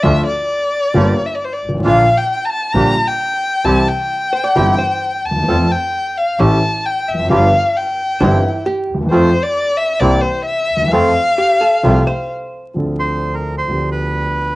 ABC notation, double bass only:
X:1
M:4/4
L:1/8
Q:1/4=132
K:F
V:1 name="Double bass" clef=bass
D,, z3 G,,, z2 _A,,, | B,,, z3 B,,, z3 | C,, z3 G,,, z2 _E,, | F,, z3 A,,, z2 F,,, |
G,,, z3 G,,, z2 _E,, | F,, z3 C,, z2 _E,, | F,, z3 C,, z3 | [K:Dm] D,,4 D,,4 |]